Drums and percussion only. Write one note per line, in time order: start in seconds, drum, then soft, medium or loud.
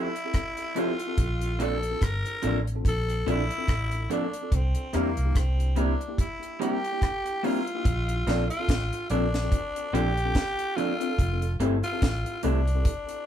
0.16 closed hi-hat soft
0.34 kick loud
0.34 cross-stick loud
0.34 closed hi-hat medium
0.57 closed hi-hat soft
0.76 closed hi-hat medium
0.99 closed hi-hat medium
1.18 kick loud
1.18 closed hi-hat medium
1.41 closed hi-hat medium
1.60 closed hi-hat medium
1.83 closed hi-hat medium
2.02 kick loud
2.02 cross-stick loud
2.02 closed hi-hat medium
2.26 closed hi-hat soft
2.43 closed hi-hat medium
2.67 closed hi-hat soft
2.85 kick loud
2.85 closed hi-hat medium
3.10 closed hi-hat medium
3.28 closed hi-hat medium
3.51 closed hi-hat medium
3.68 kick loud
3.68 cross-stick loud
3.68 closed hi-hat medium
3.91 closed hi-hat medium
4.11 closed hi-hat medium
4.34 closed hi-hat medium
4.52 kick loud
4.52 closed hi-hat medium
4.75 closed hi-hat medium
4.93 cross-stick medium
4.93 closed hi-hat medium
5.17 closed hi-hat medium
5.35 kick loud
5.35 cross-stick loud
5.35 closed hi-hat medium
5.60 closed hi-hat soft
5.76 closed hi-hat medium
6.01 closed hi-hat soft
6.18 kick loud
6.18 closed hi-hat medium
6.43 closed hi-hat soft
6.62 closed hi-hat medium
6.85 closed hi-hat soft
7.02 kick loud
7.02 cross-stick loud
7.02 closed hi-hat medium
7.26 closed hi-hat medium
7.44 open hi-hat medium
7.67 closed hi-hat medium
7.85 kick loud
7.85 closed hi-hat medium
8.09 closed hi-hat medium
8.27 snare medium
8.27 closed hi-hat medium
8.50 closed hi-hat medium
8.69 kick loud
8.69 snare loud
8.69 closed hi-hat loud
8.93 closed hi-hat medium
9.10 closed hi-hat medium
9.34 snare medium
9.34 closed hi-hat medium
9.52 kick loud
9.52 closed hi-hat medium
9.76 closed hi-hat medium
9.95 closed hi-hat medium
10.18 closed hi-hat soft
10.35 kick loud
10.35 snare loud
10.35 closed hi-hat medium
10.59 closed hi-hat soft
10.78 closed hi-hat medium
11.01 closed hi-hat medium
11.19 kick loud
11.19 closed hi-hat medium
11.42 closed hi-hat medium
11.60 closed hi-hat medium
11.84 closed hi-hat medium
12.02 kick loud
12.02 snare loud
12.02 closed hi-hat loud
12.26 closed hi-hat medium
12.43 closed hi-hat medium
12.67 closed hi-hat medium
12.85 kick loud
12.85 closed hi-hat medium
13.09 closed hi-hat medium